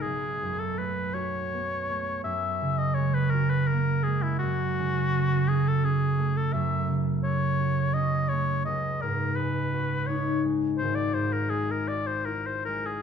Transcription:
X:1
M:3/4
L:1/16
Q:1/4=83
K:F#dor
V:1 name="Oboe"
G3 A B2 c6 | e3 d c B ^A B A2 G E | F6 G A G3 A | e3 z c4 d2 c2 |
d2 ^A2 B4 c2 z2 | ^B =d B ^A G A d B A B A G |]
V:2 name="Harp"
[B,,,B,]2 F,,2 A,2 F2 B,2 A,2 | F,,2 C,2 G,2 F2 ^A,2 G,2 | F,,2 C,2 A,2 F2 C2 A,2 | F,,2 C,2 A,2 F2 C2 A,2 |
C,,2 G,,2 G,2 F2 D2 G,2 | G,,,2 G,,2 G,2 F2 E2 G,2 |]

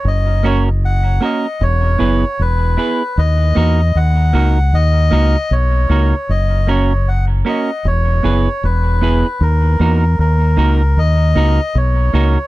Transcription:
X:1
M:4/4
L:1/16
Q:"Swing 16ths" 1/4=77
K:D#phr
V:1 name="Melodica"
d2 c2 f2 d2 c4 B4 | d4 f4 d4 c4 | d2 c2 f2 d2 c4 B4 | A4 A4 d4 c4 |]
V:2 name="Clean electric guitar"
z2 [A,CFA] z3 [A,CFA] z3 [B,EGB] z3 [B,EGB] z | z2 [A,DFA] z3 [A,DFA] z3 [A,DFA] z3 [A,DFA] z | z2 [A,CFA] z3 [A,CFA] z3 [B,EGB] z3 [B,EGB] z | z2 [A,DFA] z3 [A,DFA] z3 [A,DFA] z3 [A,DFA] z |]
V:3 name="Fingered electric bass" clef=bass
F,,,6 z2 E,,,2 F,,, z E,,,2 z2 | D,,2 E,,2 D,,2 C,,2 D,,2 C,, z B,,,2 C,, z | F,,,6 z2 E,,,2 F,,, z E,,,3 z | D,,2 E,,2 D,,2 C,,2 D,,2 C,, z B,,,2 C,, z |]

